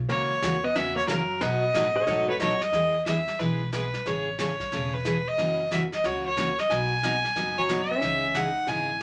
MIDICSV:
0, 0, Header, 1, 7, 480
1, 0, Start_track
1, 0, Key_signature, 4, "major"
1, 0, Tempo, 330033
1, 138, Time_signature, 4, 2, 24, 8
1, 13126, End_track
2, 0, Start_track
2, 0, Title_t, "Fiddle"
2, 0, Program_c, 0, 110
2, 134, Note_on_c, 0, 73, 97
2, 932, Note_on_c, 0, 75, 101
2, 953, Note_off_c, 0, 73, 0
2, 1100, Note_on_c, 0, 76, 104
2, 1121, Note_off_c, 0, 75, 0
2, 1396, Note_off_c, 0, 76, 0
2, 1405, Note_on_c, 0, 73, 107
2, 1564, Note_off_c, 0, 73, 0
2, 1581, Note_on_c, 0, 70, 92
2, 2052, Note_on_c, 0, 75, 102
2, 2074, Note_off_c, 0, 70, 0
2, 3324, Note_off_c, 0, 75, 0
2, 3333, Note_on_c, 0, 71, 91
2, 3488, Note_off_c, 0, 71, 0
2, 3508, Note_on_c, 0, 73, 88
2, 3805, Note_on_c, 0, 75, 104
2, 3827, Note_off_c, 0, 73, 0
2, 4449, Note_off_c, 0, 75, 0
2, 4457, Note_on_c, 0, 76, 82
2, 4932, Note_on_c, 0, 71, 81
2, 4954, Note_off_c, 0, 76, 0
2, 5415, Note_off_c, 0, 71, 0
2, 5431, Note_on_c, 0, 71, 79
2, 5922, Note_on_c, 0, 73, 82
2, 5944, Note_off_c, 0, 71, 0
2, 6380, Note_off_c, 0, 73, 0
2, 6389, Note_on_c, 0, 73, 83
2, 7184, Note_on_c, 0, 71, 97
2, 7206, Note_off_c, 0, 73, 0
2, 7674, Note_on_c, 0, 75, 110
2, 7696, Note_off_c, 0, 71, 0
2, 8313, Note_off_c, 0, 75, 0
2, 8329, Note_on_c, 0, 76, 78
2, 8462, Note_off_c, 0, 76, 0
2, 8628, Note_on_c, 0, 75, 85
2, 8800, Note_on_c, 0, 73, 92
2, 8822, Note_off_c, 0, 75, 0
2, 9085, Note_off_c, 0, 73, 0
2, 9094, Note_on_c, 0, 73, 101
2, 9589, Note_on_c, 0, 75, 96
2, 9611, Note_off_c, 0, 73, 0
2, 9751, Note_on_c, 0, 80, 108
2, 9773, Note_off_c, 0, 75, 0
2, 11030, Note_on_c, 0, 73, 95
2, 11052, Note_off_c, 0, 80, 0
2, 11508, Note_on_c, 0, 76, 100
2, 11529, Note_off_c, 0, 73, 0
2, 12155, Note_on_c, 0, 78, 87
2, 12177, Note_off_c, 0, 76, 0
2, 12625, Note_on_c, 0, 80, 95
2, 12647, Note_off_c, 0, 78, 0
2, 13126, Note_off_c, 0, 80, 0
2, 13126, End_track
3, 0, Start_track
3, 0, Title_t, "Electric slide guitar"
3, 0, Program_c, 1, 29
3, 2845, Note_on_c, 1, 69, 72
3, 2855, Note_on_c, 1, 73, 90
3, 2995, Note_off_c, 1, 69, 0
3, 3005, Note_off_c, 1, 73, 0
3, 3013, Note_on_c, 1, 69, 68
3, 3022, Note_on_c, 1, 73, 90
3, 3303, Note_off_c, 1, 69, 0
3, 3312, Note_off_c, 1, 73, 0
3, 3319, Note_on_c, 1, 69, 70
3, 3329, Note_on_c, 1, 73, 79
3, 3481, Note_off_c, 1, 69, 0
3, 3493, Note_off_c, 1, 73, 0
3, 3500, Note_on_c, 1, 75, 84
3, 3882, Note_off_c, 1, 75, 0
3, 13126, End_track
4, 0, Start_track
4, 0, Title_t, "Hollow-body jazz guitar"
4, 0, Program_c, 2, 26
4, 132, Note_on_c, 2, 58, 92
4, 869, Note_off_c, 2, 58, 0
4, 930, Note_on_c, 2, 59, 88
4, 1099, Note_off_c, 2, 59, 0
4, 1099, Note_on_c, 2, 61, 98
4, 1388, Note_off_c, 2, 61, 0
4, 1394, Note_on_c, 2, 58, 80
4, 1558, Note_off_c, 2, 58, 0
4, 1563, Note_on_c, 2, 54, 77
4, 2049, Note_off_c, 2, 54, 0
4, 2049, Note_on_c, 2, 59, 79
4, 3803, Note_off_c, 2, 59, 0
4, 11035, Note_on_c, 2, 54, 73
4, 11503, Note_off_c, 2, 54, 0
4, 11507, Note_on_c, 2, 61, 86
4, 12167, Note_off_c, 2, 61, 0
4, 12167, Note_on_c, 2, 63, 73
4, 12641, Note_off_c, 2, 63, 0
4, 12641, Note_on_c, 2, 64, 93
4, 13121, Note_off_c, 2, 64, 0
4, 13126, End_track
5, 0, Start_track
5, 0, Title_t, "Steel-string acoustic guitar"
5, 0, Program_c, 3, 25
5, 141, Note_on_c, 3, 49, 58
5, 143, Note_on_c, 3, 52, 56
5, 144, Note_on_c, 3, 58, 60
5, 151, Note_on_c, 3, 61, 63
5, 156, Note_on_c, 3, 66, 54
5, 454, Note_off_c, 3, 49, 0
5, 455, Note_off_c, 3, 52, 0
5, 455, Note_off_c, 3, 58, 0
5, 459, Note_off_c, 3, 61, 0
5, 461, Note_off_c, 3, 66, 0
5, 619, Note_on_c, 3, 49, 77
5, 626, Note_on_c, 3, 52, 69
5, 629, Note_on_c, 3, 58, 76
5, 633, Note_on_c, 3, 61, 74
5, 637, Note_on_c, 3, 66, 72
5, 787, Note_off_c, 3, 49, 0
5, 790, Note_off_c, 3, 52, 0
5, 792, Note_off_c, 3, 58, 0
5, 794, Note_off_c, 3, 61, 0
5, 795, Note_off_c, 3, 66, 0
5, 1098, Note_on_c, 3, 49, 65
5, 1106, Note_on_c, 3, 58, 58
5, 1107, Note_on_c, 3, 61, 71
5, 1108, Note_on_c, 3, 52, 57
5, 1114, Note_on_c, 3, 66, 71
5, 1412, Note_off_c, 3, 49, 0
5, 1416, Note_off_c, 3, 58, 0
5, 1416, Note_off_c, 3, 61, 0
5, 1417, Note_off_c, 3, 52, 0
5, 1420, Note_off_c, 3, 66, 0
5, 1573, Note_on_c, 3, 49, 75
5, 1580, Note_on_c, 3, 52, 73
5, 1586, Note_on_c, 3, 61, 81
5, 1587, Note_on_c, 3, 58, 72
5, 1587, Note_on_c, 3, 66, 89
5, 1743, Note_off_c, 3, 49, 0
5, 1747, Note_off_c, 3, 52, 0
5, 1750, Note_off_c, 3, 58, 0
5, 1750, Note_off_c, 3, 61, 0
5, 1750, Note_off_c, 3, 66, 0
5, 2058, Note_on_c, 3, 47, 56
5, 2066, Note_on_c, 3, 54, 53
5, 2066, Note_on_c, 3, 57, 53
5, 2069, Note_on_c, 3, 63, 62
5, 2072, Note_on_c, 3, 66, 64
5, 2372, Note_off_c, 3, 47, 0
5, 2376, Note_off_c, 3, 54, 0
5, 2376, Note_off_c, 3, 57, 0
5, 2377, Note_off_c, 3, 63, 0
5, 2379, Note_off_c, 3, 66, 0
5, 2536, Note_on_c, 3, 47, 77
5, 2542, Note_on_c, 3, 54, 86
5, 2549, Note_on_c, 3, 63, 84
5, 2552, Note_on_c, 3, 57, 81
5, 2560, Note_on_c, 3, 66, 91
5, 2705, Note_off_c, 3, 47, 0
5, 2708, Note_off_c, 3, 54, 0
5, 2711, Note_off_c, 3, 63, 0
5, 2713, Note_off_c, 3, 57, 0
5, 2717, Note_off_c, 3, 66, 0
5, 3013, Note_on_c, 3, 47, 63
5, 3016, Note_on_c, 3, 54, 62
5, 3026, Note_on_c, 3, 57, 72
5, 3027, Note_on_c, 3, 63, 72
5, 3028, Note_on_c, 3, 66, 69
5, 3329, Note_off_c, 3, 47, 0
5, 3331, Note_off_c, 3, 54, 0
5, 3336, Note_off_c, 3, 57, 0
5, 3336, Note_off_c, 3, 63, 0
5, 3337, Note_off_c, 3, 66, 0
5, 3508, Note_on_c, 3, 47, 76
5, 3516, Note_on_c, 3, 54, 81
5, 3517, Note_on_c, 3, 57, 72
5, 3518, Note_on_c, 3, 63, 80
5, 3522, Note_on_c, 3, 66, 77
5, 3671, Note_off_c, 3, 47, 0
5, 3675, Note_off_c, 3, 54, 0
5, 3676, Note_off_c, 3, 57, 0
5, 3676, Note_off_c, 3, 63, 0
5, 3678, Note_off_c, 3, 66, 0
5, 3975, Note_on_c, 3, 52, 47
5, 3975, Note_on_c, 3, 56, 50
5, 3980, Note_on_c, 3, 59, 45
5, 3985, Note_on_c, 3, 64, 56
5, 3988, Note_on_c, 3, 68, 50
5, 4291, Note_off_c, 3, 52, 0
5, 4291, Note_off_c, 3, 56, 0
5, 4293, Note_off_c, 3, 59, 0
5, 4296, Note_off_c, 3, 64, 0
5, 4297, Note_off_c, 3, 68, 0
5, 4451, Note_on_c, 3, 52, 68
5, 4460, Note_on_c, 3, 56, 62
5, 4464, Note_on_c, 3, 59, 68
5, 4468, Note_on_c, 3, 64, 71
5, 4473, Note_on_c, 3, 68, 74
5, 4623, Note_off_c, 3, 52, 0
5, 4627, Note_off_c, 3, 56, 0
5, 4629, Note_off_c, 3, 59, 0
5, 4631, Note_off_c, 3, 64, 0
5, 4634, Note_off_c, 3, 68, 0
5, 4943, Note_on_c, 3, 52, 66
5, 4947, Note_on_c, 3, 56, 60
5, 4956, Note_on_c, 3, 64, 65
5, 4957, Note_on_c, 3, 59, 65
5, 4960, Note_on_c, 3, 68, 69
5, 5255, Note_off_c, 3, 52, 0
5, 5258, Note_off_c, 3, 56, 0
5, 5262, Note_off_c, 3, 59, 0
5, 5262, Note_off_c, 3, 64, 0
5, 5264, Note_off_c, 3, 68, 0
5, 5417, Note_on_c, 3, 52, 71
5, 5420, Note_on_c, 3, 59, 69
5, 5422, Note_on_c, 3, 56, 69
5, 5424, Note_on_c, 3, 64, 71
5, 5431, Note_on_c, 3, 68, 75
5, 5586, Note_off_c, 3, 52, 0
5, 5588, Note_off_c, 3, 59, 0
5, 5589, Note_off_c, 3, 56, 0
5, 5590, Note_off_c, 3, 64, 0
5, 5593, Note_off_c, 3, 68, 0
5, 5902, Note_on_c, 3, 49, 49
5, 5906, Note_on_c, 3, 52, 55
5, 5916, Note_on_c, 3, 57, 51
5, 5916, Note_on_c, 3, 61, 58
5, 5919, Note_on_c, 3, 68, 58
5, 6215, Note_off_c, 3, 49, 0
5, 6217, Note_off_c, 3, 52, 0
5, 6222, Note_off_c, 3, 57, 0
5, 6223, Note_off_c, 3, 61, 0
5, 6224, Note_off_c, 3, 68, 0
5, 6389, Note_on_c, 3, 49, 68
5, 6394, Note_on_c, 3, 52, 71
5, 6397, Note_on_c, 3, 57, 76
5, 6401, Note_on_c, 3, 61, 70
5, 6407, Note_on_c, 3, 68, 81
5, 6553, Note_off_c, 3, 49, 0
5, 6556, Note_off_c, 3, 52, 0
5, 6557, Note_off_c, 3, 57, 0
5, 6559, Note_off_c, 3, 61, 0
5, 6562, Note_off_c, 3, 68, 0
5, 6864, Note_on_c, 3, 49, 62
5, 6871, Note_on_c, 3, 52, 62
5, 6872, Note_on_c, 3, 57, 67
5, 6880, Note_on_c, 3, 61, 64
5, 6884, Note_on_c, 3, 68, 60
5, 7177, Note_off_c, 3, 49, 0
5, 7181, Note_off_c, 3, 52, 0
5, 7181, Note_off_c, 3, 57, 0
5, 7185, Note_off_c, 3, 61, 0
5, 7187, Note_off_c, 3, 68, 0
5, 7341, Note_on_c, 3, 49, 74
5, 7345, Note_on_c, 3, 52, 71
5, 7352, Note_on_c, 3, 57, 74
5, 7354, Note_on_c, 3, 61, 77
5, 7359, Note_on_c, 3, 68, 80
5, 7510, Note_off_c, 3, 49, 0
5, 7512, Note_off_c, 3, 52, 0
5, 7515, Note_off_c, 3, 57, 0
5, 7516, Note_off_c, 3, 61, 0
5, 7518, Note_off_c, 3, 68, 0
5, 7832, Note_on_c, 3, 49, 57
5, 7838, Note_on_c, 3, 52, 53
5, 7840, Note_on_c, 3, 58, 59
5, 7840, Note_on_c, 3, 61, 62
5, 7841, Note_on_c, 3, 66, 58
5, 8141, Note_off_c, 3, 49, 0
5, 8144, Note_off_c, 3, 52, 0
5, 8145, Note_off_c, 3, 58, 0
5, 8145, Note_off_c, 3, 61, 0
5, 8146, Note_off_c, 3, 66, 0
5, 8304, Note_on_c, 3, 49, 69
5, 8308, Note_on_c, 3, 52, 81
5, 8312, Note_on_c, 3, 58, 73
5, 8316, Note_on_c, 3, 61, 71
5, 8322, Note_on_c, 3, 66, 76
5, 8471, Note_off_c, 3, 49, 0
5, 8473, Note_off_c, 3, 52, 0
5, 8475, Note_off_c, 3, 58, 0
5, 8477, Note_off_c, 3, 61, 0
5, 8480, Note_off_c, 3, 66, 0
5, 8781, Note_on_c, 3, 49, 56
5, 8782, Note_on_c, 3, 52, 60
5, 8788, Note_on_c, 3, 58, 59
5, 8791, Note_on_c, 3, 61, 65
5, 8795, Note_on_c, 3, 66, 66
5, 9096, Note_off_c, 3, 49, 0
5, 9096, Note_off_c, 3, 52, 0
5, 9099, Note_off_c, 3, 58, 0
5, 9101, Note_off_c, 3, 61, 0
5, 9103, Note_off_c, 3, 66, 0
5, 9266, Note_on_c, 3, 49, 75
5, 9274, Note_on_c, 3, 52, 65
5, 9279, Note_on_c, 3, 58, 77
5, 9280, Note_on_c, 3, 61, 76
5, 9288, Note_on_c, 3, 66, 73
5, 9432, Note_off_c, 3, 49, 0
5, 9436, Note_off_c, 3, 52, 0
5, 9439, Note_off_c, 3, 58, 0
5, 9439, Note_off_c, 3, 61, 0
5, 9443, Note_off_c, 3, 66, 0
5, 9751, Note_on_c, 3, 47, 55
5, 9758, Note_on_c, 3, 54, 54
5, 9761, Note_on_c, 3, 59, 53
5, 9763, Note_on_c, 3, 66, 57
5, 9768, Note_on_c, 3, 63, 53
5, 10061, Note_off_c, 3, 47, 0
5, 10064, Note_off_c, 3, 54, 0
5, 10066, Note_off_c, 3, 59, 0
5, 10067, Note_off_c, 3, 66, 0
5, 10069, Note_off_c, 3, 63, 0
5, 10225, Note_on_c, 3, 47, 70
5, 10236, Note_on_c, 3, 54, 65
5, 10237, Note_on_c, 3, 59, 72
5, 10243, Note_on_c, 3, 66, 85
5, 10244, Note_on_c, 3, 63, 78
5, 10392, Note_off_c, 3, 47, 0
5, 10397, Note_off_c, 3, 54, 0
5, 10398, Note_off_c, 3, 59, 0
5, 10401, Note_off_c, 3, 63, 0
5, 10401, Note_off_c, 3, 66, 0
5, 10700, Note_on_c, 3, 47, 53
5, 10711, Note_on_c, 3, 54, 56
5, 10711, Note_on_c, 3, 59, 69
5, 10713, Note_on_c, 3, 63, 62
5, 10720, Note_on_c, 3, 66, 66
5, 11015, Note_off_c, 3, 47, 0
5, 11021, Note_off_c, 3, 54, 0
5, 11021, Note_off_c, 3, 59, 0
5, 11022, Note_off_c, 3, 63, 0
5, 11025, Note_off_c, 3, 66, 0
5, 11189, Note_on_c, 3, 47, 67
5, 11191, Note_on_c, 3, 54, 67
5, 11191, Note_on_c, 3, 59, 73
5, 11200, Note_on_c, 3, 66, 76
5, 11203, Note_on_c, 3, 63, 76
5, 11354, Note_off_c, 3, 47, 0
5, 11355, Note_off_c, 3, 54, 0
5, 11355, Note_off_c, 3, 59, 0
5, 11359, Note_off_c, 3, 66, 0
5, 11360, Note_off_c, 3, 63, 0
5, 11661, Note_on_c, 3, 49, 50
5, 11671, Note_on_c, 3, 52, 55
5, 11675, Note_on_c, 3, 63, 56
5, 11683, Note_on_c, 3, 68, 54
5, 11976, Note_off_c, 3, 49, 0
5, 11981, Note_off_c, 3, 52, 0
5, 11983, Note_off_c, 3, 63, 0
5, 11987, Note_off_c, 3, 68, 0
5, 12133, Note_on_c, 3, 49, 68
5, 12145, Note_on_c, 3, 52, 74
5, 12149, Note_on_c, 3, 63, 80
5, 12152, Note_on_c, 3, 68, 84
5, 12305, Note_off_c, 3, 49, 0
5, 12311, Note_off_c, 3, 52, 0
5, 12313, Note_off_c, 3, 63, 0
5, 12315, Note_off_c, 3, 68, 0
5, 12620, Note_on_c, 3, 49, 61
5, 12630, Note_on_c, 3, 52, 62
5, 12630, Note_on_c, 3, 63, 57
5, 12636, Note_on_c, 3, 68, 61
5, 12935, Note_off_c, 3, 49, 0
5, 12940, Note_off_c, 3, 52, 0
5, 12940, Note_off_c, 3, 63, 0
5, 12943, Note_off_c, 3, 68, 0
5, 13126, End_track
6, 0, Start_track
6, 0, Title_t, "Upright bass"
6, 0, Program_c, 4, 32
6, 136, Note_on_c, 4, 37, 82
6, 602, Note_off_c, 4, 37, 0
6, 618, Note_on_c, 4, 39, 88
6, 1083, Note_off_c, 4, 39, 0
6, 1099, Note_on_c, 4, 40, 95
6, 1564, Note_off_c, 4, 40, 0
6, 1577, Note_on_c, 4, 42, 86
6, 2043, Note_off_c, 4, 42, 0
6, 2055, Note_on_c, 4, 47, 83
6, 2521, Note_off_c, 4, 47, 0
6, 2534, Note_on_c, 4, 45, 99
6, 3001, Note_off_c, 4, 45, 0
6, 3013, Note_on_c, 4, 44, 96
6, 3480, Note_off_c, 4, 44, 0
6, 3493, Note_on_c, 4, 42, 91
6, 3961, Note_off_c, 4, 42, 0
6, 3970, Note_on_c, 4, 40, 80
6, 4741, Note_off_c, 4, 40, 0
6, 4930, Note_on_c, 4, 35, 83
6, 5702, Note_off_c, 4, 35, 0
6, 5895, Note_on_c, 4, 33, 77
6, 6666, Note_off_c, 4, 33, 0
6, 6869, Note_on_c, 4, 28, 84
6, 7634, Note_off_c, 4, 28, 0
6, 7816, Note_on_c, 4, 30, 84
6, 8587, Note_off_c, 4, 30, 0
6, 8781, Note_on_c, 4, 37, 79
6, 9549, Note_off_c, 4, 37, 0
6, 9737, Note_on_c, 4, 35, 87
6, 10507, Note_off_c, 4, 35, 0
6, 10698, Note_on_c, 4, 30, 90
6, 11468, Note_off_c, 4, 30, 0
6, 11653, Note_on_c, 4, 37, 85
6, 12424, Note_off_c, 4, 37, 0
6, 12607, Note_on_c, 4, 32, 83
6, 13126, Note_off_c, 4, 32, 0
6, 13126, End_track
7, 0, Start_track
7, 0, Title_t, "Drums"
7, 134, Note_on_c, 9, 25, 52
7, 134, Note_on_c, 9, 38, 46
7, 279, Note_off_c, 9, 38, 0
7, 616, Note_on_c, 9, 38, 70
7, 616, Note_on_c, 9, 44, 60
7, 761, Note_off_c, 9, 38, 0
7, 761, Note_off_c, 9, 44, 0
7, 1094, Note_off_c, 9, 25, 0
7, 1094, Note_on_c, 9, 25, 43
7, 1094, Note_on_c, 9, 38, 47
7, 1240, Note_off_c, 9, 38, 0
7, 1573, Note_on_c, 9, 38, 64
7, 1573, Note_on_c, 9, 44, 62
7, 1718, Note_off_c, 9, 38, 0
7, 1718, Note_off_c, 9, 44, 0
7, 2049, Note_off_c, 9, 25, 0
7, 2049, Note_on_c, 9, 25, 42
7, 2049, Note_on_c, 9, 38, 45
7, 2195, Note_off_c, 9, 38, 0
7, 2536, Note_on_c, 9, 38, 63
7, 2536, Note_on_c, 9, 44, 64
7, 2681, Note_off_c, 9, 38, 0
7, 2681, Note_off_c, 9, 44, 0
7, 3007, Note_off_c, 9, 25, 0
7, 3007, Note_on_c, 9, 25, 55
7, 3007, Note_on_c, 9, 38, 49
7, 3152, Note_off_c, 9, 38, 0
7, 3485, Note_on_c, 9, 38, 64
7, 3485, Note_on_c, 9, 44, 48
7, 3630, Note_off_c, 9, 38, 0
7, 3630, Note_off_c, 9, 44, 0
7, 3797, Note_on_c, 9, 38, 41
7, 3942, Note_off_c, 9, 38, 0
7, 3962, Note_off_c, 9, 25, 0
7, 3962, Note_on_c, 9, 25, 45
7, 3962, Note_on_c, 9, 38, 39
7, 4108, Note_off_c, 9, 38, 0
7, 4453, Note_on_c, 9, 38, 57
7, 4453, Note_on_c, 9, 44, 55
7, 4599, Note_off_c, 9, 38, 0
7, 4599, Note_off_c, 9, 44, 0
7, 4764, Note_on_c, 9, 38, 34
7, 4909, Note_off_c, 9, 38, 0
7, 4936, Note_off_c, 9, 25, 0
7, 4936, Note_on_c, 9, 25, 50
7, 4936, Note_on_c, 9, 38, 39
7, 5081, Note_off_c, 9, 38, 0
7, 5419, Note_on_c, 9, 38, 56
7, 5419, Note_on_c, 9, 44, 57
7, 5565, Note_off_c, 9, 38, 0
7, 5565, Note_off_c, 9, 44, 0
7, 5727, Note_on_c, 9, 38, 34
7, 5872, Note_off_c, 9, 38, 0
7, 5900, Note_off_c, 9, 25, 0
7, 5900, Note_on_c, 9, 25, 48
7, 5900, Note_on_c, 9, 38, 39
7, 6046, Note_off_c, 9, 38, 0
7, 6379, Note_on_c, 9, 38, 58
7, 6379, Note_on_c, 9, 44, 58
7, 6524, Note_off_c, 9, 38, 0
7, 6524, Note_off_c, 9, 44, 0
7, 6689, Note_on_c, 9, 36, 37
7, 6689, Note_on_c, 9, 38, 37
7, 6834, Note_off_c, 9, 38, 0
7, 6835, Note_off_c, 9, 36, 0
7, 6863, Note_off_c, 9, 25, 0
7, 6863, Note_on_c, 9, 25, 50
7, 6863, Note_on_c, 9, 38, 40
7, 7008, Note_off_c, 9, 38, 0
7, 7347, Note_on_c, 9, 38, 52
7, 7347, Note_on_c, 9, 44, 55
7, 7492, Note_off_c, 9, 38, 0
7, 7492, Note_off_c, 9, 44, 0
7, 7827, Note_off_c, 9, 25, 0
7, 7827, Note_on_c, 9, 25, 47
7, 7827, Note_on_c, 9, 38, 40
7, 7973, Note_off_c, 9, 38, 0
7, 8311, Note_on_c, 9, 38, 55
7, 8311, Note_on_c, 9, 44, 49
7, 8457, Note_off_c, 9, 38, 0
7, 8457, Note_off_c, 9, 44, 0
7, 8614, Note_on_c, 9, 38, 37
7, 8759, Note_off_c, 9, 38, 0
7, 8786, Note_off_c, 9, 25, 0
7, 8786, Note_on_c, 9, 25, 41
7, 8786, Note_on_c, 9, 38, 42
7, 8932, Note_off_c, 9, 38, 0
7, 9265, Note_on_c, 9, 38, 55
7, 9265, Note_on_c, 9, 44, 47
7, 9411, Note_off_c, 9, 38, 0
7, 9411, Note_off_c, 9, 44, 0
7, 9574, Note_on_c, 9, 38, 38
7, 9719, Note_off_c, 9, 38, 0
7, 9740, Note_off_c, 9, 25, 0
7, 9740, Note_on_c, 9, 25, 39
7, 9740, Note_on_c, 9, 38, 37
7, 9886, Note_off_c, 9, 38, 0
7, 10226, Note_on_c, 9, 38, 56
7, 10226, Note_on_c, 9, 44, 52
7, 10372, Note_off_c, 9, 38, 0
7, 10372, Note_off_c, 9, 44, 0
7, 10535, Note_on_c, 9, 38, 34
7, 10681, Note_off_c, 9, 38, 0
7, 10702, Note_off_c, 9, 25, 0
7, 10702, Note_on_c, 9, 25, 43
7, 10702, Note_on_c, 9, 38, 43
7, 10848, Note_off_c, 9, 38, 0
7, 11180, Note_on_c, 9, 38, 58
7, 11180, Note_on_c, 9, 44, 51
7, 11325, Note_off_c, 9, 38, 0
7, 11325, Note_off_c, 9, 44, 0
7, 11654, Note_off_c, 9, 25, 0
7, 11654, Note_on_c, 9, 25, 41
7, 11654, Note_on_c, 9, 38, 39
7, 11800, Note_off_c, 9, 38, 0
7, 12136, Note_on_c, 9, 38, 52
7, 12136, Note_on_c, 9, 44, 50
7, 12281, Note_off_c, 9, 38, 0
7, 12281, Note_off_c, 9, 44, 0
7, 12612, Note_off_c, 9, 25, 0
7, 12612, Note_on_c, 9, 25, 51
7, 12612, Note_on_c, 9, 38, 39
7, 12757, Note_off_c, 9, 38, 0
7, 13126, Note_off_c, 9, 25, 0
7, 13126, End_track
0, 0, End_of_file